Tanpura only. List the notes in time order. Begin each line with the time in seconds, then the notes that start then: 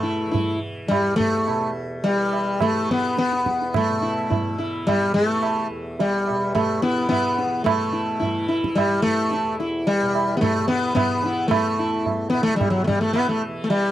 Already playing: E2 B2 E3
0.26 E3
0.86 E2
1.48 B2
2.08 E3
2.69 E3
3.28 E2
3.89 B2
4.48 E3
5.08 E3
5.70 E2
6.30 B2
6.88 E3
7.46 E3
7.65 B2
8.24 E3
8.83 E3
9.43 E2
10.02 B2
10.60 E3
11.18 E3
11.77 E2
12.34 B2
12.91 E3
13.48 E3